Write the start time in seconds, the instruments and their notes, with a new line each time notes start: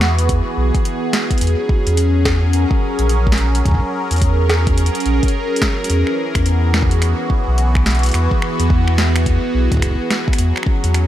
Already playing: sub bass E2, analog synth pad E3 B3 F#4 G#4
0.01 snare
0.18 closed hi-hat
0.29 kick, closed hi-hat
0.57 sub bass B1
0.75 kick, closed hi-hat
0.85 closed hi-hat
1.13 snare, closed hi-hat
1.31 kick, closed hi-hat
1.38 sub bass E2, analog synth pad F#3, closed hi-hat
1.41 closed hi-hat
1.47 closed hi-hat
1.59 analog synth pad C#4
1.69 kick
1.87 sub bass E2, closed hi-hat
1.97 closed hi-hat
2.25 kick, snare
2.37 analog synth pad A#4
2.53 closed hi-hat
2.71 kick
2.99 sub bass A#1, closed hi-hat
3.09 closed hi-hat
3.27 kick
3.32 snare
3.38 closed hi-hat
3.55 closed hi-hat
3.65 sub bass E2, kick, closed hi-hat
3.68 kick
3.71 kick
3.74 kick
3.80 kick
4.11 sub bass E2, closed hi-hat
4.13 closed hi-hat
4.16 closed hi-hat
4.18 closed hi-hat
4.20 closed hi-hat
4.22 kick, closed hi-hat
4.50 snare
4.67 kick, closed hi-hat
4.78 closed hi-hat
4.86 closed hi-hat
4.95 closed hi-hat
5.00 closed hi-hat
5.06 sub bass A#1, closed hi-hat
5.23 kick, closed hi-hat
5.28 closed hi-hat
5.56 closed hi-hat
5.62 kick, snare
5.84 closed hi-hat
5.90 sub bass E2, analog synth pad E3, closed hi-hat
6.07 finger snap
6.35 sub bass E2, analog synth pad B3, finger snap, kick, closed hi-hat
6.46 closed hi-hat
6.73 analog synth pad F#4, finger snap, snare
6.83 kick
6.91 closed hi-hat
7.02 finger snap, closed hi-hat
7.30 kick
7.47 sub bass B1
7.58 closed hi-hat
7.75 finger snap, kick
7.86 snare, closed hi-hat
7.90 closed hi-hat
7.95 closed hi-hat
7.99 closed hi-hat
8.03 closed hi-hat
8.06 closed hi-hat
8.09 closed hi-hat
8.11 sub bass E2, finger snap, closed hi-hat
8.14 closed hi-hat
8.31 kick
8.42 finger snap
8.59 sub bass E2, closed hi-hat
8.70 kick
8.88 finger snap
8.98 snare
9.16 finger snap, closed hi-hat
9.26 kick, closed hi-hat
9.54 sub bass B1
9.72 kick, closed hi-hat
9.74 kick
9.77 kick
9.80 kick
9.82 finger snap, kick, closed hi-hat
9.87 kick
9.91 kick
9.95 kick
10.10 snare, closed hi-hat
10.28 kick
10.33 finger snap, closed hi-hat
10.38 sub bass E2, analog synth pad F#3, closed hi-hat
10.56 analog synth pad C#4, finger snap
10.63 finger snap, kick
10.84 sub bass E2, closed hi-hat
10.94 finger snap, closed hi-hat